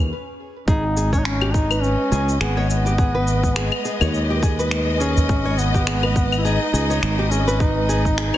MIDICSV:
0, 0, Header, 1, 7, 480
1, 0, Start_track
1, 0, Key_signature, 5, "minor"
1, 0, Tempo, 576923
1, 563, Time_signature, 4, 2, 24, 8
1, 6970, End_track
2, 0, Start_track
2, 0, Title_t, "String section"
2, 0, Program_c, 0, 48
2, 562, Note_on_c, 0, 56, 87
2, 853, Note_on_c, 0, 75, 85
2, 1196, Note_on_c, 0, 71, 82
2, 6970, Note_off_c, 0, 56, 0
2, 6970, Note_off_c, 0, 71, 0
2, 6970, Note_off_c, 0, 75, 0
2, 6970, End_track
3, 0, Start_track
3, 0, Title_t, "Nylon-string guitar"
3, 0, Program_c, 1, 24
3, 566, Note_on_c, 1, 68, 96
3, 693, Note_off_c, 1, 68, 0
3, 805, Note_on_c, 1, 68, 68
3, 933, Note_off_c, 1, 68, 0
3, 938, Note_on_c, 1, 73, 77
3, 1165, Note_off_c, 1, 73, 0
3, 1179, Note_on_c, 1, 67, 78
3, 1238, Note_off_c, 1, 67, 0
3, 1283, Note_on_c, 1, 68, 72
3, 1411, Note_off_c, 1, 68, 0
3, 1419, Note_on_c, 1, 71, 70
3, 1753, Note_off_c, 1, 71, 0
3, 1761, Note_on_c, 1, 68, 99
3, 1891, Note_off_c, 1, 68, 0
3, 2003, Note_on_c, 1, 68, 71
3, 2131, Note_off_c, 1, 68, 0
3, 2138, Note_on_c, 1, 73, 73
3, 2365, Note_off_c, 1, 73, 0
3, 2378, Note_on_c, 1, 67, 76
3, 2438, Note_off_c, 1, 67, 0
3, 2482, Note_on_c, 1, 68, 79
3, 2611, Note_off_c, 1, 68, 0
3, 2618, Note_on_c, 1, 71, 79
3, 2952, Note_off_c, 1, 71, 0
3, 2962, Note_on_c, 1, 68, 96
3, 3091, Note_off_c, 1, 68, 0
3, 3203, Note_on_c, 1, 68, 77
3, 3332, Note_off_c, 1, 68, 0
3, 3338, Note_on_c, 1, 73, 68
3, 3565, Note_off_c, 1, 73, 0
3, 3579, Note_on_c, 1, 67, 71
3, 3639, Note_off_c, 1, 67, 0
3, 3685, Note_on_c, 1, 68, 67
3, 3813, Note_off_c, 1, 68, 0
3, 3820, Note_on_c, 1, 71, 81
3, 4154, Note_off_c, 1, 71, 0
3, 4163, Note_on_c, 1, 68, 98
3, 4291, Note_off_c, 1, 68, 0
3, 4402, Note_on_c, 1, 68, 76
3, 4531, Note_off_c, 1, 68, 0
3, 4538, Note_on_c, 1, 73, 76
3, 4765, Note_off_c, 1, 73, 0
3, 4779, Note_on_c, 1, 67, 77
3, 4839, Note_off_c, 1, 67, 0
3, 4882, Note_on_c, 1, 68, 81
3, 5011, Note_off_c, 1, 68, 0
3, 5019, Note_on_c, 1, 71, 75
3, 5353, Note_off_c, 1, 71, 0
3, 5364, Note_on_c, 1, 68, 114
3, 5492, Note_off_c, 1, 68, 0
3, 5602, Note_on_c, 1, 68, 74
3, 5731, Note_off_c, 1, 68, 0
3, 5740, Note_on_c, 1, 73, 81
3, 5966, Note_off_c, 1, 73, 0
3, 5979, Note_on_c, 1, 67, 75
3, 6039, Note_off_c, 1, 67, 0
3, 6085, Note_on_c, 1, 68, 70
3, 6213, Note_off_c, 1, 68, 0
3, 6219, Note_on_c, 1, 71, 84
3, 6553, Note_off_c, 1, 71, 0
3, 6564, Note_on_c, 1, 68, 94
3, 6692, Note_off_c, 1, 68, 0
3, 6804, Note_on_c, 1, 68, 80
3, 6932, Note_off_c, 1, 68, 0
3, 6939, Note_on_c, 1, 73, 75
3, 6970, Note_off_c, 1, 73, 0
3, 6970, End_track
4, 0, Start_track
4, 0, Title_t, "Duduk"
4, 0, Program_c, 2, 69
4, 568, Note_on_c, 2, 63, 98
4, 915, Note_off_c, 2, 63, 0
4, 942, Note_on_c, 2, 61, 96
4, 991, Note_on_c, 2, 63, 79
4, 1004, Note_off_c, 2, 61, 0
4, 1041, Note_on_c, 2, 61, 104
4, 1054, Note_off_c, 2, 63, 0
4, 1283, Note_on_c, 2, 63, 106
4, 1296, Note_off_c, 2, 61, 0
4, 1523, Note_on_c, 2, 61, 109
4, 1535, Note_off_c, 2, 63, 0
4, 1999, Note_off_c, 2, 61, 0
4, 2004, Note_on_c, 2, 59, 89
4, 2227, Note_off_c, 2, 59, 0
4, 2238, Note_on_c, 2, 59, 87
4, 3167, Note_off_c, 2, 59, 0
4, 4161, Note_on_c, 2, 61, 93
4, 4640, Note_on_c, 2, 59, 90
4, 4652, Note_off_c, 2, 61, 0
4, 5305, Note_off_c, 2, 59, 0
4, 5310, Note_on_c, 2, 64, 71
4, 5365, Note_on_c, 2, 63, 104
4, 5378, Note_off_c, 2, 64, 0
4, 6086, Note_on_c, 2, 61, 92
4, 6099, Note_off_c, 2, 63, 0
4, 6323, Note_off_c, 2, 61, 0
4, 6328, Note_on_c, 2, 63, 95
4, 6970, Note_off_c, 2, 63, 0
4, 6970, End_track
5, 0, Start_track
5, 0, Title_t, "Fretless electric bass"
5, 0, Program_c, 3, 35
5, 562, Note_on_c, 3, 32, 95
5, 1623, Note_off_c, 3, 32, 0
5, 1761, Note_on_c, 3, 37, 81
5, 1969, Note_off_c, 3, 37, 0
5, 2002, Note_on_c, 3, 32, 94
5, 3063, Note_off_c, 3, 32, 0
5, 3335, Note_on_c, 3, 39, 87
5, 4375, Note_off_c, 3, 39, 0
5, 4402, Note_on_c, 3, 32, 94
5, 5463, Note_off_c, 3, 32, 0
5, 5602, Note_on_c, 3, 37, 83
5, 5809, Note_off_c, 3, 37, 0
5, 5845, Note_on_c, 3, 32, 99
5, 6905, Note_off_c, 3, 32, 0
5, 6970, End_track
6, 0, Start_track
6, 0, Title_t, "Udu"
6, 3338, Note_on_c, 9, 64, 79
6, 3422, Note_off_c, 9, 64, 0
6, 4302, Note_on_c, 9, 64, 84
6, 4385, Note_off_c, 9, 64, 0
6, 6970, End_track
7, 0, Start_track
7, 0, Title_t, "Drums"
7, 563, Note_on_c, 9, 36, 123
7, 568, Note_on_c, 9, 69, 32
7, 646, Note_off_c, 9, 36, 0
7, 651, Note_off_c, 9, 69, 0
7, 807, Note_on_c, 9, 69, 84
7, 891, Note_off_c, 9, 69, 0
7, 938, Note_on_c, 9, 36, 60
7, 944, Note_on_c, 9, 69, 45
7, 1022, Note_off_c, 9, 36, 0
7, 1027, Note_off_c, 9, 69, 0
7, 1043, Note_on_c, 9, 26, 109
7, 1047, Note_on_c, 9, 69, 30
7, 1126, Note_off_c, 9, 26, 0
7, 1130, Note_off_c, 9, 69, 0
7, 1177, Note_on_c, 9, 75, 85
7, 1260, Note_off_c, 9, 75, 0
7, 1283, Note_on_c, 9, 36, 103
7, 1289, Note_on_c, 9, 69, 78
7, 1367, Note_off_c, 9, 36, 0
7, 1372, Note_off_c, 9, 69, 0
7, 1420, Note_on_c, 9, 75, 84
7, 1424, Note_on_c, 9, 69, 48
7, 1503, Note_off_c, 9, 75, 0
7, 1507, Note_off_c, 9, 69, 0
7, 1528, Note_on_c, 9, 69, 32
7, 1611, Note_off_c, 9, 69, 0
7, 1767, Note_on_c, 9, 69, 74
7, 1850, Note_off_c, 9, 69, 0
7, 1904, Note_on_c, 9, 69, 45
7, 1987, Note_off_c, 9, 69, 0
7, 2004, Note_on_c, 9, 26, 108
7, 2008, Note_on_c, 9, 69, 32
7, 2087, Note_off_c, 9, 26, 0
7, 2092, Note_off_c, 9, 69, 0
7, 2247, Note_on_c, 9, 69, 75
7, 2331, Note_off_c, 9, 69, 0
7, 2383, Note_on_c, 9, 69, 49
7, 2466, Note_off_c, 9, 69, 0
7, 2482, Note_on_c, 9, 36, 127
7, 2486, Note_on_c, 9, 69, 35
7, 2566, Note_off_c, 9, 36, 0
7, 2569, Note_off_c, 9, 69, 0
7, 2725, Note_on_c, 9, 69, 81
7, 2808, Note_off_c, 9, 69, 0
7, 2858, Note_on_c, 9, 36, 61
7, 2862, Note_on_c, 9, 69, 46
7, 2941, Note_off_c, 9, 36, 0
7, 2945, Note_off_c, 9, 69, 0
7, 2963, Note_on_c, 9, 26, 100
7, 2967, Note_on_c, 9, 69, 33
7, 3046, Note_off_c, 9, 26, 0
7, 3050, Note_off_c, 9, 69, 0
7, 3095, Note_on_c, 9, 75, 77
7, 3179, Note_off_c, 9, 75, 0
7, 3204, Note_on_c, 9, 69, 80
7, 3287, Note_off_c, 9, 69, 0
7, 3336, Note_on_c, 9, 75, 76
7, 3340, Note_on_c, 9, 69, 44
7, 3419, Note_off_c, 9, 75, 0
7, 3424, Note_off_c, 9, 69, 0
7, 3445, Note_on_c, 9, 69, 34
7, 3529, Note_off_c, 9, 69, 0
7, 3683, Note_on_c, 9, 36, 108
7, 3686, Note_on_c, 9, 69, 84
7, 3766, Note_off_c, 9, 36, 0
7, 3770, Note_off_c, 9, 69, 0
7, 3822, Note_on_c, 9, 69, 48
7, 3905, Note_off_c, 9, 69, 0
7, 3922, Note_on_c, 9, 26, 100
7, 3926, Note_on_c, 9, 69, 34
7, 4005, Note_off_c, 9, 26, 0
7, 4009, Note_off_c, 9, 69, 0
7, 4166, Note_on_c, 9, 69, 79
7, 4250, Note_off_c, 9, 69, 0
7, 4302, Note_on_c, 9, 69, 51
7, 4385, Note_off_c, 9, 69, 0
7, 4403, Note_on_c, 9, 36, 127
7, 4408, Note_on_c, 9, 69, 37
7, 4486, Note_off_c, 9, 36, 0
7, 4491, Note_off_c, 9, 69, 0
7, 4649, Note_on_c, 9, 69, 89
7, 4732, Note_off_c, 9, 69, 0
7, 4779, Note_on_c, 9, 36, 64
7, 4784, Note_on_c, 9, 69, 45
7, 4862, Note_off_c, 9, 36, 0
7, 4868, Note_off_c, 9, 69, 0
7, 4884, Note_on_c, 9, 26, 99
7, 4889, Note_on_c, 9, 69, 35
7, 4967, Note_off_c, 9, 26, 0
7, 4972, Note_off_c, 9, 69, 0
7, 5018, Note_on_c, 9, 75, 72
7, 5101, Note_off_c, 9, 75, 0
7, 5124, Note_on_c, 9, 36, 106
7, 5129, Note_on_c, 9, 69, 84
7, 5207, Note_off_c, 9, 36, 0
7, 5212, Note_off_c, 9, 69, 0
7, 5261, Note_on_c, 9, 75, 72
7, 5266, Note_on_c, 9, 69, 47
7, 5345, Note_off_c, 9, 75, 0
7, 5349, Note_off_c, 9, 69, 0
7, 5372, Note_on_c, 9, 69, 36
7, 5455, Note_off_c, 9, 69, 0
7, 5612, Note_on_c, 9, 69, 81
7, 5695, Note_off_c, 9, 69, 0
7, 5747, Note_on_c, 9, 69, 49
7, 5830, Note_off_c, 9, 69, 0
7, 5847, Note_on_c, 9, 26, 95
7, 5852, Note_on_c, 9, 69, 36
7, 5931, Note_off_c, 9, 26, 0
7, 5935, Note_off_c, 9, 69, 0
7, 6090, Note_on_c, 9, 69, 81
7, 6173, Note_off_c, 9, 69, 0
7, 6225, Note_on_c, 9, 69, 53
7, 6309, Note_off_c, 9, 69, 0
7, 6325, Note_on_c, 9, 36, 127
7, 6330, Note_on_c, 9, 69, 35
7, 6408, Note_off_c, 9, 36, 0
7, 6413, Note_off_c, 9, 69, 0
7, 6570, Note_on_c, 9, 69, 84
7, 6653, Note_off_c, 9, 69, 0
7, 6700, Note_on_c, 9, 36, 58
7, 6706, Note_on_c, 9, 69, 50
7, 6783, Note_off_c, 9, 36, 0
7, 6789, Note_off_c, 9, 69, 0
7, 6804, Note_on_c, 9, 26, 97
7, 6809, Note_on_c, 9, 69, 32
7, 6888, Note_off_c, 9, 26, 0
7, 6892, Note_off_c, 9, 69, 0
7, 6940, Note_on_c, 9, 75, 78
7, 6970, Note_off_c, 9, 75, 0
7, 6970, End_track
0, 0, End_of_file